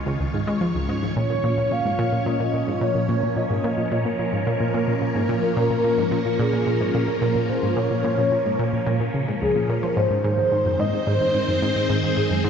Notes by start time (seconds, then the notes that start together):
Already playing: D#3 G#3 C#4 F4 C#5
0.06 C#2
0.20 C#2
0.34 G#2
0.47 G#3
0.61 F3
0.75 C#2
0.89 G#2
1.02 G#2
1.16 A#2 F3 C#5
1.30 A#2
1.42 A#2 A#3
1.58 A#2 A#4
1.71 A#2 F5
1.85 G#2
1.99 A#2
2.12 A#2
2.26 A#2 D#5
2.40 A#2
2.54 A#2
2.68 G#2
2.81 A#2 C#5
2.95 A#2
3.09 A#2
3.23 A#2
3.36 A#2 D#5
3.50 G#2
3.64 A#2
3.78 A#2
3.91 A#2 C#5
4.05 A#2
4.19 A#2
4.33 G#2
4.47 A#2
4.60 A#2
4.74 A#2
4.88 A#2
5.02 A#2
5.15 G#2
5.29 A#2
5.43 A#2
5.57 A#2 A#4
5.70 A#2
5.84 A#2
5.98 G#2
6.11 A#2
6.25 A#2
6.39 A#2 G#4
6.53 A#2
6.67 A#2
6.81 G#2
6.94 A#2 A#4
7.08 A#2
7.22 A#2
7.35 A#2
7.49 A#2 C5
7.63 G#2
7.77 A#2 C#5
7.91 A#2
8.04 A#2
8.18 A#2
8.32 A#2
8.45 G#2
8.59 A#2
8.73 A#2
8.87 A#2
9.00 A#2
9.14 C#3
9.28 G#2
9.42 C#2 G#4
9.55 A#2
9.69 A#2 A#4
9.83 F3
9.97 G#2 D#3 C5
10.10 G#2
10.24 G#2
10.35 G#2 G#3 C5
10.47 C4
10.52 G#2
10.66 F#2
10.79 G#2 D#5
10.93 G#2
11.07 G#2 G#4 C5
11.21 G#2
11.35 G#2
11.48 F#2
11.62 G#2
11.76 G#2
11.90 G#2
12.03 G#2
12.17 G#2 G#4
12.31 F#2
12.44 G#2